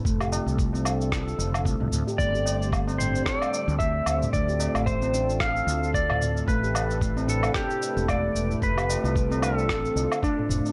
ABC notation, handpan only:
X:1
M:4/4
L:1/16
Q:"Swing 16ths" 1/4=112
K:Flyd
V:1 name="Handpan"
A, G z2 A, C D z A z3 A, z2 G | A, G z2 A, C D z A4 A, z3 | A, G z3 C D z A4 A, z3 | A, G z2 A, C D z A4 A, z3 |
A, G z2 A, C D z A4 A, z3 |]